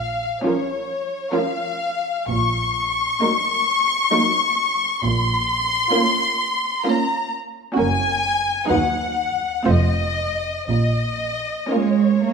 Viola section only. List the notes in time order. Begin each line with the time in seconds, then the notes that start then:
0.46 F3 C#4
1.34 F3 C#4
3.22 F#3 A#3
4.13 F#3 A#3
5.94 A#3 C#4
6.86 A#3 C#4
7.76 A#3 C#4
8.69 F#3 D#4
9.66 A3 C4
11.70 A#3 C#4